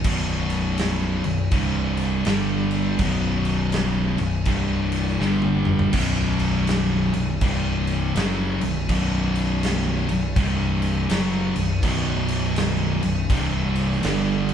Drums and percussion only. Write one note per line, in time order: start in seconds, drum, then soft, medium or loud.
0.04 kick loud
0.04 crash medium
0.50 crash medium
0.78 snare loud
0.78 crash medium
1.24 crash medium
1.51 kick loud
1.51 crash medium
1.97 crash medium
2.25 snare loud
2.25 crash medium
2.71 crash medium
2.99 kick loud
2.99 crash medium
3.45 crash medium
3.72 snare loud
3.72 crash medium
4.18 crash medium
4.45 kick loud
4.45 crash medium
4.92 crash medium
5.07 snare soft
5.21 snare medium
5.42 high tom medium
5.65 mid tom medium
5.79 floor tom loud
5.93 kick loud
5.93 crash loud
6.39 crash medium
6.67 snare loud
6.67 crash medium
7.13 crash medium
7.41 kick loud
7.41 crash medium
7.87 crash medium
8.16 snare loud
8.16 crash medium
8.61 crash medium
8.89 kick loud
8.89 crash medium
9.35 crash medium
9.63 snare loud
9.63 crash medium
10.09 crash medium
10.36 kick loud
10.36 crash medium
10.82 crash medium
11.09 snare loud
11.09 crash loud
11.56 crash medium
11.83 kick loud
11.83 crash loud
12.28 crash medium
12.56 snare loud
12.56 crash medium
13.03 crash medium
13.30 kick loud
13.30 crash medium
13.75 crash medium
13.92 snare soft
14.03 snare loud
14.03 crash medium
14.49 crash medium